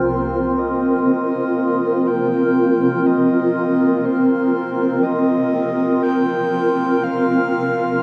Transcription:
Already playing: C4 F4 A#4 C5
0.07 C5
0.58 D#5
2.07 G5
3.06 D#5
4.05 C5
5.03 D#5
6.03 G5
7.03 F5

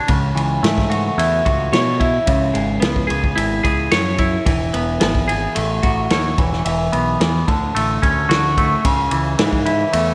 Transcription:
Already playing: C#5
0.08 C#2 C#3, kick, ride
0.35 C#2 E3, ride
0.63 G#2 A3, snare, ride
0.78 kick, snare
0.90 F#4, ride
1.18 E2 E4, ride
1.45 C#2 F#4, kick, ride
1.72 B2 C#5, snare, ride
2.00 E4, kick, ride
2.26 C#2 C#3, kick, ride
2.54 G#1 G#3, ride
2.80 C#2 B3, snare, ride
2.96 kick
3.07 C#2 G#4, ride
3.24 kick
3.36 G#1 E4, ride
3.63 C#2 G#4, kick, ride
3.91 F#2 C#5, snare, ride
4.18 E4, kick, ride
4.46 E1 E3, kick, ride
4.73 E1 B3, ride
5.00 G#1 B3, snare, ride
5.15 kick
5.28 G#4, ride
5.55 A1 A3, ride
5.83 A1 F#4, kick, ride
6.10 D#2 C#5, snare, ride
6.38 E1 E3, kick, ride
6.53 snare
6.65 E1 E3, ride
6.92 B1 B3, ride
7.20 E2 E3, snare, ride
7.48 D2 D3, kick, ride
7.75 A1 A3, ride
8.02 D2 C#4, kick, ride
8.29 D2 F#4, snare, ride
8.57 A3, kick, ride
8.85 C#2 C#3, kick, ride
9.11 C#2 E3, ride
9.38 G#2 E3, snare, ride
9.53 kick
9.66 E4, ride
9.93 E2 A3, ride

